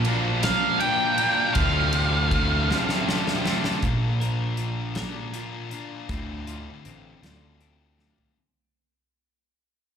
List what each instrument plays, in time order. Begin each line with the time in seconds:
Already playing: picked electric bass A#1, distorted electric guitar A#2 F3 A#3 D4 F4 A#4
0.05 distorted electric guitar A#3 D4 F4 A#4, ride
0.42 distorted electric guitar A#3 D4 F4 A#4, lead electric guitar F5, snare, ride
0.80 distorted electric guitar A#3 D4 F4 A#4, lead electric guitar G5, ride
1.18 distorted electric guitar A#2 F3 D4 F4 A#4, ride
1.22 distorted electric guitar A#3
1.54 distorted electric guitar D2 A2 D3 A3 C4 F4, picked electric bass D2, lead electric guitar F5, kick, ride
1.93 distorted electric guitar D3 A3 C4 F4, ride
2.31 distorted electric guitar D3 A3 C4 F4, kick, ride
2.70 distorted electric guitar D3 A3 C4 F4, snare
2.89 snare
3.07 distorted electric guitar D3 A3 C4 F4, snare
3.27 snare
3.44 distorted electric guitar D3 A3 C4 F4, snare
3.48 distorted electric guitar D2 A2
3.64 snare
3.81 picked electric bass A#1, distorted electric guitar A#2 F3 A#3 D4 F4 A#4, kick, closed hi-hat
4.20 distorted electric guitar A#3 D4 F4 A#4, closed hi-hat
4.57 clean electric guitar F4, closed hi-hat
4.95 distorted electric guitar A#2 F3 A#3 D4 F4 A#4, snare, closed hi-hat
5.33 distorted electric guitar A#3 D4 F4 A#4, closed hi-hat
5.71 distorted electric guitar A#3 D4 F4 A#4, closed hi-hat
6.09 picked electric bass D2, distorted electric guitar D2 A2 D3 A3 C4 F4, kick, closed hi-hat
6.47 distorted electric guitar D3 A3 C4 F4, closed hi-hat
6.85 picked electric bass A1, clean electric guitar C4, closed hi-hat
7.22 picked electric bass D2, distorted electric guitar D2 A2 D3 A3 C4 F4, snare, closed hi-hat
7.60 distorted electric guitar D3 A3 C4 F4, closed hi-hat
7.99 distorted electric guitar D3 A3 C4 F4, snare
8.18 floor tom